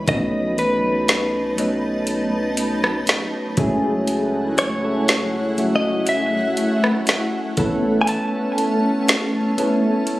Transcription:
Already playing: B4
0.07 B1 F#3 A3 B3 C#4 D#4 D#5 A5, kick, closed hi-hat
0.58 B4, closed hi-hat
1.08 snare, closed hi-hat
1.58 F#3 A3 B3 C#4 D#4, closed hi-hat
2.07 closed hi-hat
2.57 closed hi-hat
2.84 cross-stick
3.07 snare, closed hi-hat
3.57 C#2 F#3 A3 C#4 E4 G#4 F#5, kick, closed hi-hat
4.07 closed hi-hat
4.58 C#5, closed hi-hat
4.82 F#3 A3 C#4 E4 A4
5.08 snare, closed hi-hat
5.57 F#3 A3 C#4 E4 F#4, closed hi-hat
5.76 D#5
6.07 E5, closed hi-hat
6.57 closed hi-hat
6.84 cross-stick
7.07 snare, closed hi-hat
7.57 A1 A3 B3 C#4 E4 A4 A5, kick, closed hi-hat
8.01 G#5
8.07 A5, closed hi-hat
8.58 closed hi-hat
9.08 snare, closed hi-hat
9.57 A3 B3 C#4 E4 A4 A5, closed hi-hat
10.07 closed hi-hat

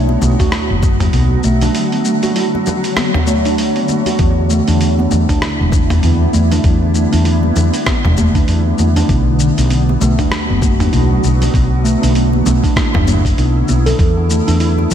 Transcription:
Already playing: B1 D3 F#3 B3 F#4
0.09 B3, muted conga, high conga
0.22 B1 A3, muted conga, low conga, shaker
0.39 F#4, kick, mid tom, open hi-hat, shaker
0.52 E4, cross-stick, open hi-hat, shaker
0.70 F#1
0.83 kick, muted conga, shaker
1.00 mid tom, open hi-hat, high conga, shaker
1.13 B1 B3, open hi-hat, shaker
1.44 B1 A3, shaker
1.61 D4, open hi-hat, low conga, shaker
1.74 C#5, open hi-hat, shaker
1.92 B3, open hi-hat
2.05 A3, shaker
2.23 F#4, open hi-hat, high conga, shaker
2.36 E4, open hi-hat, shaker
2.55 muted conga, high conga
2.66 muted conga, low conga, shaker
2.84 open hi-hat, shaker
2.97 B3, cross-stick, open hi-hat, high conga, shaker
3.14 mid tom, muted conga, low conga
3.27 A3, muted conga, high conga, shaker
3.45 D4, open hi-hat, shaker
3.58 open hi-hat, shaker
3.76 B3, open hi-hat
3.89 A3, high conga, shaker
4.06 F#4, open hi-hat, low conga, shaker
4.19 E2 G3 B3 E4, kick, open hi-hat, shaker
4.50 A3, shaker
4.68 E2 D4, open hi-hat, shaker
4.81 open hi-hat, shaker
4.98 B3, muted conga, high conga
5.11 E2 A3, muted conga, low conga, shaker
5.29 D4, kick, mid tom, open hi-hat, shaker
5.42 E4, cross-stick, open hi-hat, shaker
5.60 E1
5.72 kick, muted conga, shaker
5.90 mid tom, open hi-hat, high conga, shaker
6.03 E2 B3, open hi-hat, shaker
6.33 E2 A3, shaker
6.51 D4, open hi-hat, low conga, shaker
6.64 E2, kick, open hi-hat, shaker
6.82 B3
6.95 A3, shaker
7.12 E2 D4, open hi-hat, high conga, shaker
7.25 E4, open hi-hat, shaker
7.43 high conga
7.56 E2, low conga, shaker
7.74 open hi-hat, shaker
7.87 B3, kick, cross-stick, open hi-hat, high conga, shaker
8.04 E1, mid tom, muted conga, low conga
8.17 A3, muted conga, high conga, shaker
8.35 D4, kick, open hi-hat, shaker
8.48 E2, open hi-hat, shaker
8.66 B3
8.78 E2 A3, high conga, shaker
8.96 D4, open hi-hat, low conga, shaker
9.09 B1 F#3 E4 F#4, kick, open hi-hat, shaker
9.40 shaker
9.58 B1, open hi-hat, shaker
9.70 B3, open hi-hat, shaker
9.89 muted conga, high conga
10.01 B1 A3, muted conga, low conga, shaker
10.19 D4, kick, mid tom, open hi-hat, shaker
10.32 cross-stick, open hi-hat, shaker
10.50 F#1 B3
10.62 A3, kick, muted conga, shaker
10.80 D4, mid tom, open hi-hat, high conga, shaker
10.93 B1 E4, open hi-hat, shaker
11.24 B1, shaker
11.42 open hi-hat, low conga, shaker
11.53 B1 B3 E4, kick, open hi-hat, shaker
11.84 A3, shaker
12.02 B1 D4, open hi-hat, high conga, shaker
12.15 open hi-hat, shaker
12.33 B3, high conga
12.45 B1 A3, low conga, shaker
12.64 D4, kick, open hi-hat, shaker
12.76 E4, kick, cross-stick, open hi-hat, high conga, shaker
12.94 F#1, mid tom, muted conga, low conga
13.08 muted conga, high conga, shaker
13.25 kick, open hi-hat, shaker
13.38 B1 D4, open hi-hat, shaker
13.68 B1 B3, high conga, shaker
13.86 A4, open hi-hat, low conga, shaker
13.99 E2 D3, kick, open hi-hat, shaker
14.17 B3
14.29 A3, shaker
14.47 E2 D4, open hi-hat, shaker
14.60 E4, open hi-hat, shaker
14.78 muted conga, high conga
14.91 shaker

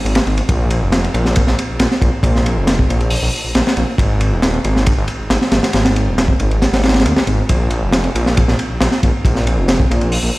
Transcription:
0.05 G#1, ride
0.15 snare, ride
0.27 G#1, ride
0.37 ride
0.49 A#1, kick, ride
0.70 ride
0.81 F1
0.92 snare, ride
1.04 ride
1.14 A#1, ride
1.25 snare
1.36 kick, ride
1.47 A#1, snare
1.59 ride
1.69 A#1
1.80 A#1, snare, ride
1.91 snare
2.02 A#1, kick, ride
2.23 A#1, kick, ride
2.35 snare
2.46 ride
2.56 F1
2.67 snare, ride
2.79 kick
2.89 A#1, ride
3.00 ride
3.10 open hi-hat
3.22 A#1
3.45 A#1
3.55 A#1, snare, ride
3.67 snare
3.77 A#1, ride
3.98 G#1, kick, ride
4.21 ride
4.32 D#1
4.42 snare, ride
4.54 ride
4.64 G#1, ride
4.76 snare
4.86 kick, ride
4.98 G#1
5.08 ride
5.20 G#1
5.30 G#1, snare, ride
5.41 snare
5.52 G#1, snare, ride
5.63 snare, ride
5.73 G#1, snare, ride
5.85 snare, ride
5.96 ride
6.07 D#1
6.18 snare, ride
6.28 kick
6.40 G#1, ride
6.51 ride
6.62 snare, ride
6.72 G#1, snare, ride
6.83 snare, ride
6.89 snare, ride
6.94 snare, ride
7.00 snare, ride
7.05 D#2, ride
7.17 snare
7.27 G#1, ride
7.49 A#1, kick, ride
7.70 ride
7.82 F1
7.92 snare, ride
8.04 ride
8.15 A#1, ride
8.26 snare
8.37 kick, ride
8.48 A#1, snare
8.59 ride
8.70 A#1
8.81 A#1, snare, ride
8.91 snare
9.03 A#1, kick, ride
9.25 A#1, kick, ride
9.35 snare
9.47 ride
9.57 F1
9.68 snare, ride
9.80 kick
9.90 A#1, ride
10.01 ride
10.12 open hi-hat
10.23 A#1

